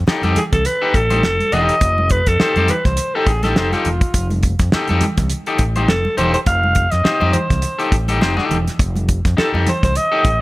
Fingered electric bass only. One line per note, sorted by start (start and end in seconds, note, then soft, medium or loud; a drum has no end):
0.08 muted fingered electric bass stroke soft
0.23 0.34 F2 loud
0.53 0.64 C2 medium
0.95 1.19 A1 medium
1.24 1.38 F1 medium
1.53 1.67 E1 medium
1.82 2.20 F1 loud
2.27 2.38 F2 loud
2.41 muted fingered electric bass stroke soft
2.56 2.67 F2 loud
2.86 2.96 C2 medium
3.27 3.52 A1 medium
3.57 3.70 F1 medium
3.86 4.00 E1 medium
4.14 4.53 F1 loud
4.60 4.71 F2 loud
4.74 muted fingered electric bass stroke medium
4.90 5.00 F2 loud
5.18 5.29 C2 medium
5.59 5.84 A1 medium
5.89 6.03 F1 medium
6.19 6.32 E1 loud
6.47 6.86 F1 loud
6.93 7.03 F2 loud
7.05 muted fingered electric bass stroke soft
7.22 7.32 F2 loud
7.51 7.61 C2 medium
7.92 8.17 A1 medium
8.21 8.35 F1 medium
8.51 8.65 E1 loud
8.80 9.18 F1 loud
9.25 9.36 F2 loud
9.38 muted fingered electric bass stroke soft
9.54 9.65 F2 loud
9.83 9.94 C2 medium
10.25 10.41 A1 medium